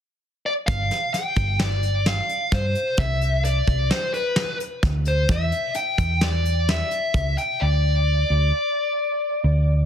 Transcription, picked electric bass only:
0.68 0.89 G1 medium
1.36 2.19 G1 medium
2.53 2.74 G2 medium
2.98 3.60 C2 medium
3.68 3.89 C2 medium
4.83 5.25 D2 medium
5.29 5.50 E2 loud
5.98 6.81 E2 medium
7.15 7.35 C#2 medium
7.62 8.23 D2 medium
8.30 8.50 D2 medium
9.44 9.85 D2 medium

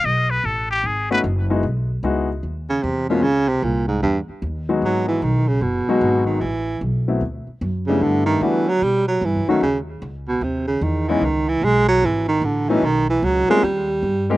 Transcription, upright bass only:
0.04 0.43 B1 medium
0.44 0.82 A1 medium
0.83 1.22 G#1 medium
1.24 1.62 F#1 loud
1.63 2.02 B1 medium
2.03 2.42 C#2 medium
2.43 2.82 D#2 medium
2.83 3.22 E2 medium
3.22 3.61 C#2 medium
3.62 4.01 C2 medium
4.03 4.27 E2 medium
4.28 muted upright bass stroke soft
4.42 4.81 D#2 medium
4.82 5.21 G#1 medium
5.22 5.61 B1 medium
5.61 5.86 F#1 medium
5.88 muted upright bass stroke soft
6.01 6.40 G#1 medium
6.41 6.80 A1 medium
6.81 7.20 B1 medium
7.21 7.46 D2 medium
7.47 muted upright bass stroke soft
7.61 8.00 F#2 loud
8.01 8.40 G2 medium
8.41 8.80 D3 medium
8.82 9.20 B2 medium
9.21 9.37 G2 medium
9.35 9.47 F#2 medium
9.48 9.60 D2 medium
9.61 10.00 D#2 medium
10.02 10.40 C#2 medium
10.41 10.80 D#2 medium
10.81 11.20 E2 loud
11.21 11.60 C#2 medium
11.62 12.00 B1 medium
12.02 12.41 G#1 medium
12.42 12.81 A1 loud
12.82 13.21 B1 medium
13.22 13.47 C#2 loud
13.63 14.01 D#2 medium
14.03 14.37 G2 medium

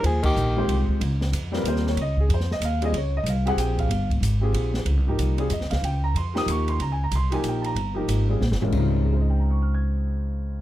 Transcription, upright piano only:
0.57 0.98 G#3 medium
0.57 0.98 C4 medium
0.57 0.98 F4 medium
0.57 0.99 G4 medium
0.57 0.99 C5 medium
1.52 1.94 G3 medium
1.52 1.94 C4 medium
1.52 1.94 F4 medium
1.52 1.95 A#4 medium
1.57 1.66 B4 medium
1.68 1.86 C5 medium
1.88 1.98 C#5 medium
2.01 2.19 D#5 medium
2.20 2.30 G#4 medium
2.34 2.51 C5 medium
2.52 2.62 D#5 medium
2.65 2.82 F5 medium
2.82 2.92 G3 medium
2.82 2.92 C4 medium
2.82 2.92 F4 medium
2.82 2.93 G#4 medium
2.82 2.95 D#5 medium
2.97 3.14 C#5 medium
3.17 3.27 D#5 medium
3.29 3.47 F5 medium
3.46 3.87 C4 medium
3.46 3.88 F4 medium
3.46 3.87 G4 medium
3.46 3.88 G#4 medium
3.46 3.58 F#5 medium
3.60 3.78 G5 medium
3.79 4.08 F5 medium
4.41 4.83 C4 medium
4.41 4.84 F4 medium
4.41 4.83 G4 medium
4.41 4.84 G#4 medium
5.07 5.37 F3 medium
5.07 5.37 A#3 medium
5.07 5.37 D#4 medium
5.07 5.37 G4 medium
5.38 5.49 G3 medium
5.38 5.49 C4 medium
5.38 5.49 F4 medium
5.38 5.50 G#4 medium
5.52 5.71 D#5 medium
5.70 5.82 F5 medium
5.85 6.03 G5 medium
6.04 6.15 A#5 medium
6.17 6.35 C6 medium
6.34 6.76 F3 medium
6.34 6.76 A#3 medium
6.34 6.76 D#4 medium
6.34 6.77 G4 medium
6.34 6.48 D#6 loud
6.50 6.68 C#6 medium
6.69 6.80 C6 medium
6.82 6.91 A#5 medium
6.92 7.01 G#5 medium
7.04 7.13 A#5 medium
7.15 7.33 C6 medium
7.30 7.73 F3 medium
7.30 7.73 A#3 medium
7.30 7.73 D#4 medium
7.30 7.74 G4 medium
7.30 7.44 G#5 medium
7.48 7.66 G5 medium
7.62 7.63 A5 medium
7.66 7.95 A#5 medium
7.94 8.25 F3 medium
7.94 8.26 A#3 medium
7.94 8.26 D#4 medium
7.94 8.26 G4 medium
8.29 8.39 G3 medium
8.29 8.39 C4 medium
8.29 8.40 F4 medium
8.29 8.40 G#4 medium
8.61 9.03 C2 medium
8.61 9.03 D#3 medium
8.61 8.69 G#3 medium
8.61 9.03 C#4 medium
8.61 8.78 F4 medium
8.67 10.61 C#3 medium
8.67 10.61 G#3 medium
8.73 10.61 C4 medium
8.73 10.61 D#4 medium
8.80 10.61 F4 medium
9.05 10.61 G#4 soft
9.13 10.61 C5 soft
9.20 10.61 D#5 soft
9.30 10.61 G5 soft
9.40 10.61 A#5 soft
9.50 10.61 C#6 soft
9.62 10.61 F6 soft
9.74 10.61 G#6 soft

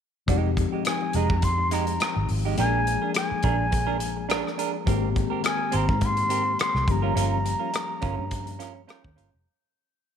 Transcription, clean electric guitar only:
0.28 0.50 G#3 medium
0.28 0.50 D#4 medium
0.28 0.50 G4 medium
0.57 muted clean electric guitar stroke soft
0.72 0.84 G#3 soft
0.72 0.85 D#4 soft
0.72 0.85 G4 soft
0.85 muted clean electric guitar stroke soft
1.02 muted clean electric guitar stroke soft
1.15 1.36 G#3 medium
1.15 1.30 D#4 medium
1.15 1.30 G#4 medium
1.44 muted clean electric guitar stroke soft
1.58 muted clean electric guitar stroke soft
1.71 1.93 G#3 medium
1.71 1.87 D#4 medium
1.71 1.86 G4 medium
1.88 muted clean electric guitar stroke soft
2.01 muted clean electric guitar stroke soft
2.16 muted clean electric guitar stroke soft
2.45 2.66 G#3 soft
2.45 2.58 D#4 medium
2.45 2.59 G4 medium
2.58 2.79 D4 medium
2.58 2.80 G#4 medium
2.58 2.80 A#4 medium
2.87 muted clean electric guitar stroke soft
3.02 3.14 D4 soft
3.02 3.14 G#4 soft
3.02 3.15 A#4 soft
3.15 muted clean electric guitar stroke soft
3.30 muted clean electric guitar stroke soft
3.44 3.65 D4 medium
3.44 3.58 G#4 medium
3.44 3.58 A#4 medium
3.59 muted clean electric guitar stroke soft
3.71 muted clean electric guitar stroke soft
3.87 3.98 D4 medium
3.87 3.98 G#4 medium
3.87 3.99 A#4 medium
3.99 muted clean electric guitar stroke soft
4.17 muted clean electric guitar stroke soft
4.29 4.50 D4 medium
4.29 4.44 G#4 medium
4.29 4.43 A#4 medium
4.44 muted clean electric guitar stroke soft
4.58 4.75 D4 medium
4.58 4.73 G#4 medium
4.58 4.73 A#4 medium
4.74 muted clean electric guitar stroke soft
4.86 5.08 C4 medium
4.86 5.08 G4 medium
4.86 5.09 A#4 medium
5.16 muted clean electric guitar stroke soft
5.30 5.42 C4 soft
5.30 5.43 G4 soft
5.30 5.44 A#4 medium
5.43 muted clean electric guitar stroke soft
5.59 muted clean electric guitar stroke soft
5.72 5.94 C4 medium
5.72 5.88 G4 medium
5.72 5.88 C5 medium
5.88 muted clean electric guitar stroke soft
6.01 muted clean electric guitar stroke soft
6.17 muted clean electric guitar stroke soft
6.29 6.51 C4 medium
6.29 6.45 G4 medium
6.29 6.44 A#4 medium
6.45 muted clean electric guitar stroke soft
6.59 muted clean electric guitar stroke soft
6.75 muted clean electric guitar stroke soft
7.02 7.14 C#4 medium
7.02 7.15 F4 medium
7.02 7.16 A#4 medium
7.15 7.37 C#4 medium
7.15 7.38 F4 medium
7.15 7.38 A#4 medium
7.44 muted clean electric guitar stroke soft
7.59 7.72 C#4 soft
7.59 7.73 F4 soft
7.59 7.73 A#4 soft
7.73 muted clean electric guitar stroke soft
7.89 muted clean electric guitar stroke soft
8.01 8.23 C#4 medium
8.01 8.17 F4 medium
8.01 8.16 A#4 medium
8.17 muted clean electric guitar stroke soft
8.31 muted clean electric guitar stroke soft
8.46 muted clean electric guitar stroke soft
8.59 8.81 C#4 medium
8.59 8.75 F4 medium
8.59 8.74 A#4 medium
8.75 muted clean electric guitar stroke soft
8.88 9.10 C#4 medium
8.88 9.04 F4 medium
8.88 9.02 A#4 medium
9.04 muted clean electric guitar stroke soft
9.16 9.34 C#4 medium
9.16 9.32 F4 medium
9.16 9.31 A#4 medium
9.32 muted clean electric guitar stroke soft

